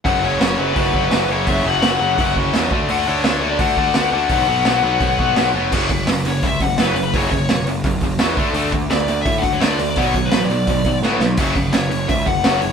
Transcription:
<<
  \new Staff \with { instrumentName = "Lead electric guitar" } { \time 4/4 \key fis \minor \tempo 4 = 170 fis''8 cis''8 cis''8 b'2 cis''8 | e''8 fis''2 r4. | fis''8 cis''8 cis''8. d''16 fis''4. fis''8~ | fis''2.~ fis''8 r8 |
r4. cis''8 e''8 fis''8 b'8. b'16 | cis''8 cis''4 r2 r8 | r4 d''4 e''8 fis''8 cis''8 d''8 | d''8 cis''8 b'8 d''4. r4 |
r4 cis''4 e''8 fis''4 cis''8 | }
  \new Staff \with { instrumentName = "Distorted electric guitar" } { \clef bass \time 4/4 \key fis \minor <fis, cis fis>8 <fis, cis fis>8 <fis, cis fis>8 <fis, cis fis>8 <fis, cis fis>8 <fis, cis fis>8 <fis, cis fis>8 <fis, cis fis>8 | <fis, cis fis>8 <fis, cis fis>8 <fis, cis fis>8 <fis, cis fis>8 <fis, cis fis>8 <fis, cis fis>8 <fis, cis fis>8 <d a d'>8 | <d a d'>8 <d a d'>8 <d a d'>8 <d a d'>8 <d a d'>8 <d a d'>8 <d a d'>8 <d a d'>8 | <b, fis b>8 <b, fis b>8 <b, fis b>8 <b, fis b>8 <b, fis b>8 <b, fis b>8 <b, fis b>8 <b, fis b>8 |
<fis, cis fis>8 <fis, cis>8 <fis, cis>8 <fis, cis>8 <fis, cis>8 <fis, cis>8 <fis, cis fis>8 <fis, cis>8 | <fis, cis fis>8 <fis, cis>8 <fis, cis>8 <fis, cis>8 <fis, cis>8 <fis, cis>8 <fis, cis fis>8 <d a d'>8 | <d a d'>8 <d a>8 <d a>8 <d a>8 <d a>8 <d a>8 <d a d'>8 <d a>8 | <b, fis b>8 <b, fis>8 <b, fis>8 <b, fis>8 <b, fis>8 <b, fis>8 <b, fis b>8 <b, fis>8 |
<fis, cis fis>8 <fis, cis>8 <fis, cis>8 <fis, cis>8 <fis, cis>8 <fis, cis>8 <fis, cis fis>8 <fis, cis>8 | }
  \new Staff \with { instrumentName = "Picked electric bass" } { \clef bass \time 4/4 \key fis \minor fis,,8 fis,,8 fis,,8 fis,,8 fis,,4 fis,,8 fis,,8 | fis,,8 fis,,8 fis,,8 fis,,8 fis,,4 e,8 d,8 | d,8 d,8 d,8 d,8 d,4 d,8 d,8 | b,,8 b,,8 b,,8 b,,8 b,,4 b,,8 eis,,8 |
fis,,4 fis,,8 fis,,8 cis,8 fis,,8 fis,,8 fis,,8 | fis,,8 fis,,8 e,,8 fis,,8 fis,,8 fis,,8 e,8 d,8 | d,4 d,8 d,8 a,8 d,8 d,8 d,8 | b,,8 b,,8 a,,8 b,,8 b,,8 b,,8 a,8 b,,8 |
fis,,4 fis,,8 fis,,8 cis,8 fis,,8 fis,,8 fis,,8 | }
  \new DrumStaff \with { instrumentName = "Drums" } \drummode { \time 4/4 <hho bd>4 <hho sn>4 <hho bd>8 bd8 <hho sn>4 | <hho bd>4 <hho sn>4 <hho bd>8 bd8 <hho sn>8 bd8 | hho4 <hho sn>4 <hho bd>8 bd8 <hho sn>4 | <hho bd>4 <hho sn>4 <hho bd>8 bd8 <hho sn>4 |
<cymc bd>8 <hho bd>8 <hho sn>8 hho8 <hho bd>8 <hho bd>8 <hho sn>8 hho8 | <hho bd>8 <hho bd>8 <hho sn>8 hho8 <hho bd>8 <hho bd>8 <hho sn>8 <hho bd>8 | hho8 <hho bd>8 <hho sn>8 hho8 <hho bd>8 <hho bd>8 <hho sn>8 hho8 | <hho bd>8 <hho bd>8 <hho sn>8 hho8 <hho bd>8 <hho bd>8 sn8 sn8 |
<cymc hho bd>8 <hho bd>8 <hho sn>8 hho8 <hho bd>8 <hho bd>8 <hho sn>8 hho8 | }
>>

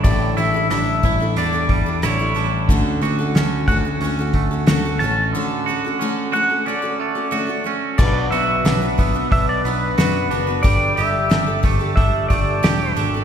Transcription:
<<
  \new Staff \with { instrumentName = "Pedal steel guitar" } { \time 4/4 \key d \major \tempo 4 = 90 d''8 e''8 e''4 d''4 cis''8. r16 | r4. fis''8 r4. a''8 | r4. fis''8 d''8 d''4 r8 | d''8 e''4. e''16 d''16 b'4 r8 |
d''8 e''4 r8 e''8 d''4 r8 | }
  \new Staff \with { instrumentName = "Tonewheel organ" } { \time 4/4 \key d \major r1 | r1 | r1 | <d' fis' b'>1 |
<d' g' a'>1 | }
  \new Staff \with { instrumentName = "Clean electric guitar" } { \time 4/4 \key d \major <a, g d' e'>8 e'8 d'8 e'8 d'8 g8 e'8 d'8 | d8 fis'8 cis'8 fis'8 cis'8 a8 fis'8 cis'8 | d8 fis'8 cis'8 fis'8 cis'8 a8 fis'8 cis'8 | b,8 fis'8 d'8 b8 d'8 b8 fis'8 d'8 |
g8 g'8 d'8 a8 d'8 a8 g'8 d'8 | }
  \new Staff \with { instrumentName = "Steel-string acoustic guitar" } { \time 4/4 \key d \major <a, d g d' e' a'>8 <g d' e' a'>16 <g d' e' a'>16 <a, d g d' e' a'>8 <g d' e' a'>16 <g d' e' a'>16 <g d' e' a'>16 <g d' e' a'>8 <g d' e' a'>16 <a, d g d' e' a'>16 <g d' e' a'>16 <g d' e' a'>8 | <d a cis' fis' a'>8 <a cis' fis' a'>16 <cis' fis' a'>16 <d a cis' fis' a'>8 <a cis' fis' a'>16 <cis' fis' a'>16 <a cis' fis' a'>16 <cis' fis' a'>8 <cis' fis' a'>16 <d a cis' fis' a'>16 <cis' fis' a'>16 <a cis' fis' a'>8 | <d a cis' fis' a'>8 <a cis' fis' a'>16 <cis' fis' a'>16 <d a cis' fis' a'>8 <a cis' fis' a'>16 <cis' fis' a'>16 <a cis' fis' a'>16 <cis' fis' a'>8 <cis' fis' a'>16 <d a cis' fis' a'>16 <cis' fis' a'>16 <a cis' fis' a'>8 | <b, fis b d' fis' b'>8 <b d' fis' b'>8 <b, fis b d' fis' b'>16 <b d' fis' b'>16 <b d' fis' b'>16 <b d' fis' b'>8. <b d' fis' b'>8 <b, fis b d' fis' b'>8 <b d' fis' b'>16 <b d' fis' b'>16 |
<g d' g' a'>8 <g d' g' a'>8 <g d' g' a'>16 <d' g' a'>16 <g d' g' a'>16 <d' g' a'>8. <g d' g' a'>8 <g d' g' a'>8 <g d' g' a'>16 <d' g' a'>16 | }
  \new Staff \with { instrumentName = "Picked electric bass" } { \clef bass \time 4/4 \key d \major a,,8 a,,8 a,,8 a,,8 e,4 a,,8 a,,8 | d,8 d,8 d,8 d,8 d,4 d,8 a,,8 | r1 | b,,8 b,,8 b,,4 b,,8 b,,8 fis,8 fis,,8 |
g,,8 g,,8 g,,8 g,,8 g,,8 g,,8 e,,8 gis,,8 | }
  \new DrumStaff \with { instrumentName = "Drums" } \drummode { \time 4/4 <hho bd>8 hho8 <hho ss>8 <hho bd>8 hho8 <hho bd>8 <hho ss>8 hho8 | <hho bd>8 hho8 <hho sn>8 <hho bd>8 hho8 <hho bd>8 <hho sn>8 hho8 | r4 r4 r4 r4 | <cymc bd>8 hho8 <hho sn>8 <hho bd>8 <hho bd>8 hho8 <hho sn>8 hho8 |
<hho bd>8 hho8 <hho sn>8 <hho bd>8 <hho bd>8 <hho bd>8 <hho sn>8 hho8 | }
>>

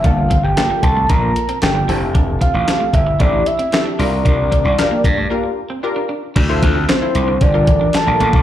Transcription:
<<
  \new Staff \with { instrumentName = "Soft synth lead" } { \time 4/4 \key g \dorian \tempo 4 = 114 f''8. g''8. a''8 bes''4 g''8. r16 | r8 f''4 e''8 d''8 e''8 e''8 d''8~ | d''2. r4 | r4 c''4 d''4 a''4 | }
  \new Staff \with { instrumentName = "Analog polysynth" } { \time 4/4 \key g \dorian <bes d' f' a'>8 r8 <bes d' f' a'>8 r8 <bes d' f' a'>8 r8 <bes d' f' a'>8 <c' e' g' a'>8~ | <c' e' g' a'>8. r16 <c' e' g' a'>8 r8 <c' e' g' a'>8 r8 <c' e' g' a'>8 <d' f' g' bes'>8~ | <d' f' g' bes'>8. r16 <d' f' g' bes'>8 r8 <d' f' g' bes'>8 r8 <d' f' g' bes'>8 r8 | r16 <e' f' a' c''>8 r8 <e' f' a' c''>8 r8 <d' f' a' bes'>8 r8 <d' f' a' bes'>8 r16 | }
  \new Staff \with { instrumentName = "Analog synth pad" } { \time 4/4 \key g \dorian r1 | r1 | r1 | <d a c' e' f'>2 <g d' a' bes'>2 | }
  \new Staff \with { instrumentName = "Clean electric guitar" } { \time 4/4 \key g \dorian d'16 r16 c'16 r8 bes16 r16 a16 bes16 r8 c'16 r16 d'16 d'16 r16 | d'16 r16 c'16 r8 a16 r16 g16 a16 r8 c'16 r16 d'16 d'16 r16 | d'16 r16 c'16 r8 bes16 r16 a16 bes16 r8 c'16 r16 d'16 d'16 r16 | d'16 r8 c'16 c'16 r8 d'16 r16 f'16 r16 d'16 r16 bes16 bes16 r16 | }
  \new Staff \with { instrumentName = "Slap bass" } { \clef bass \time 4/4 \key g \dorian g,,8. g,,16 r8 c,8 bes,,8 r8 g,,8 f,,8~ | f,,8. a,,16 r8 g,,8 a,,8 r4 c,8 | c,8. c,16 r8 g,8 r2 | d,8 d,8 r8 c,8 g,,8 a,,8 r16 bes,,16 a,,16 bes,,16 | }
  \new DrumStaff \with { instrumentName = "Drums" } \drummode { \time 4/4 <hh bd>8 <hh bd>8 <hc hh sn>8 <hh bd>8 <hh bd>8 hh16 hh16 <hc hh sn>8 hho8 | <hh bd>8 <hh bd>8 <hc hh sn>8 <hh bd>8 <hh bd>8 hh16 hh16 <hc hh sn>8 hho8 | <hh bd>8 <hh bd>8 <hc hh sn>8 <hh bd>8 r4 r4 | <cymc hh bd>8 <hh bd>8 <hc hh sn>8 hh8 <hh bd>8 <hh bd>8 <hc hh sn>8 hh16 bd16 | }
>>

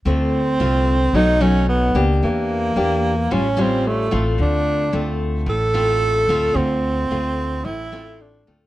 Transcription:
<<
  \new Staff \with { instrumentName = "Tenor saxophone" } { \time 4/4 \key d \minor \tempo 4 = 110 c'2 dis'8 cis'8 b8. r16 | bes2 cis'8 bis8 a8. r16 | d'4. r8 a'2 | c'2 e'4 d'8. r16 | }
  \new Staff \with { instrumentName = "Nylon-string guitar" } { \time 4/4 \key d \minor << { <a c' f'>8 r8 <a c' f'>8 r8 <fis a dis'>8 <fis a dis'>4 <bes d' g'>8~ | <bes d' g'>4 <bes d' g'>8 r8 <g cis' eis'>8 <g cis' eis'>4 <a bis eis'>8~ | <a bis eis'>4 <a c' f'>4 r8 <a c' f'>4 <a c' f'>8~ | <a c' f'>4 <a c' f'>4 r8 <a c' f'>4 <a c' f'>8 | } \\ { d2 b,2 | e2 a,2 | d2 a,2 | d2 a,2 | } >> }
  \new Staff \with { instrumentName = "Upright bass" } { \clef bass \time 4/4 \key d \minor d,4 c,4 b,,4. cis,8 | e,4 e,4 a,,4. a,,8 | d,4 d,4 a,,4. d,8 | d,4 d,4 a,,4. d,8 | }
>>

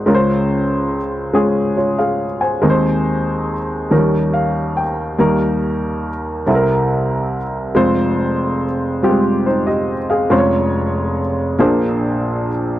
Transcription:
<<
  \new Staff \with { instrumentName = "Upright piano" } { \time 6/8 \key des \lydian \tempo 4. = 47 << { r2 <f' des''>16 <aes' f''>8 <c'' aes''>16~ | <c'' aes''>16 r4. r16 f''8 g''8 | r2. | r2 <ees' c''>16 <g' ees''>8 <aes' f''>16~ |
<aes' f''>16 r2 r8. | } \\ { <aes des' f' bes' c''>4 r8 <aes des' f' aes'>4 r8 | <aes c' ees' bes' c''>4 r8 <f g des' ees' bes'>4 r8 | <g bes ees' bes'>4 r8 <g c' e' a' bes'>4 r8 | <aes c' f' c''>4 r8 <g aes c' f' g'>4 r8 |
<aes des' f' c'' des''>4 r8 <bes d' aes' c''>4 r8 | } >> }
  \new Staff \with { instrumentName = "Upright piano" } { \clef bass \time 6/8 \key des \lydian <des, des>2. | <ees, ees>4. <ees, ees>4. | <ees, ees>4. <c, c>4. | <f,, f,>2. |
<f,, f,>4. <bes,, bes,>4. | }
>>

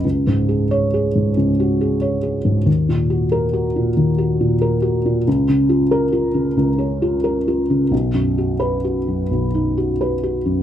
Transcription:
\new Staff \with { instrumentName = "Felt piano" } { \time 4/4 \key des \mixolydian \tempo 4 = 91 << { r4 des''8 r2 r8 | r4 bes'8 r2 r8 | r4 bes'8 r2 r8 | r4 b'8 r2 r8 | } \\ { \tuplet 3/2 { des,8 aes,8 aes'8~ aes'8 aes'8 aes,8 des,8 ges'8 aes'8 des''8 aes'8 aes,8 } | \tuplet 3/2 { ees,8 bes,8 ges'8~ ges'8 ges'8 bes,8 ees,8 ges'8 bes,8 bes'8 ges'8 bes,8 } | \tuplet 3/2 { des,8 des8 f'8~ f'8 f'8 des8 des,8 des'8 f'8 bes'8 f'8 des8 } | \tuplet 3/2 { b,,8 fis,8 fis'8~ fis'8 fis'8 fis,8 b,,8 dis'8 fis'8 b'8 fis'8 fis,8 } | } >> }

